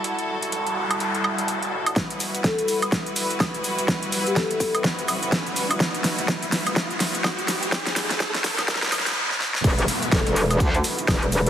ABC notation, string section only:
X:1
M:4/4
L:1/8
Q:"Swing 16ths" 1/4=125
K:Em
V:1 name="String section"
[G,EFA]8 | [G,EFB]8- | [G,EFB]8- | [G,EFB]8- |
[G,EFB]6 z2 | [G,EFB]8 |]